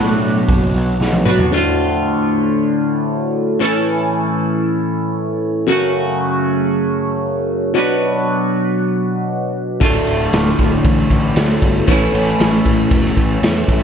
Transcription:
0.00 0.41 A2 medium
0.00 1.25 B2 medium
0.00 1.25 F#3 medium
0.00 1.26 B3 medium
0.00 1.26 D4 medium
0.00 1.25 F#4 medium
0.00 1.24 B4 medium
0.22 open hi-hat medium
0.48 0.71 F#1 medium
0.48 kick loud
0.48 open hi-hat medium
0.74 0.96 B1 medium
0.74 open hi-hat medium
1.00 1.22 B1 medium
1.00 snare medium
1.12 high tom medium
1.25 1.49 B1 medium
1.25 1.51 B2 medium
1.25 1.52 F#3 medium
1.25 1.52 B3 medium
1.25 1.51 D4 medium
1.25 1.51 F#4 medium
1.25 1.51 B4 medium
1.25 mid tom medium
1.39 floor tom medium
1.52 3.58 D2 medium
1.52 3.58 A2 medium
1.52 3.59 D3 medium
1.52 3.61 A3 medium
1.52 3.59 F4 loud
3.60 5.66 A2 medium
3.60 5.66 E3 medium
3.60 5.66 A3 medium
3.60 5.66 C#4 loud
3.60 5.67 E4 medium
3.60 5.67 A4 loud
5.67 7.73 F#2 loud
5.67 7.73 C#3 medium
5.67 7.73 F#3 medium
5.67 7.74 A3 medium
5.67 7.74 C#4 medium
5.67 7.74 F#4 loud
7.74 9.80 B2 medium
7.74 9.80 F#3 loud
7.74 9.80 B3 medium
7.74 9.80 D4 medium
7.74 9.81 F#4 medium
7.74 9.81 B4 medium
9.80 10.01 D1 loud
9.80 11.86 D2 medium
9.80 11.86 A2 medium
9.80 11.87 D3 loud
9.80 11.88 A3 loud
9.80 11.87 F4 medium
9.80 kick loud
9.80 crash medium
10.07 10.27 D1 medium
10.07 crash medium
10.33 10.53 D1 medium
10.33 snare loud
10.33 crash medium
10.47 snare soft
10.59 10.79 D1 medium
10.59 kick medium
10.59 crash medium
10.85 11.04 A1 medium
10.85 kick loud
10.85 crash medium
11.10 11.30 A1 medium
11.10 kick medium
11.10 crash medium
11.36 11.56 D2 medium
11.36 snare loud
11.36 crash medium
11.62 11.82 G1 medium
11.62 kick medium
11.62 crash medium
11.87 12.07 A1 medium
11.87 13.83 A2 medium
11.87 13.83 E3 medium
11.87 13.83 A3 medium
11.87 13.83 C#4 medium
11.87 13.83 E4 loud
11.87 13.83 A4 medium
11.87 kick loud
11.87 crash medium
12.13 12.33 A1 medium
12.13 crash medium
12.40 12.59 A1 loud
12.40 snare loud
12.40 crash medium
12.66 12.85 A1 loud
12.66 kick medium
12.66 crash medium
12.91 13.11 E1 loud
12.91 kick loud
12.91 crash medium
13.05 snare soft
13.17 13.37 A1 medium
13.17 kick medium
13.17 crash medium
13.42 13.62 E2 medium
13.42 snare loud
13.42 crash medium
13.68 13.83 A1 medium
13.68 kick medium
13.68 crash medium

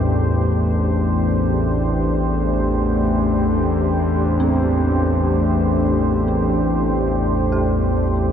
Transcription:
0.00 8.32 A1 medium
0.00 8.32 E2 medium
0.00 8.32 A3 medium
0.00 8.32 D4 medium
0.00 8.32 G4 medium
0.00 8.32 C5 medium
4.40 8.32 C4 medium
7.52 8.32 G4 soft

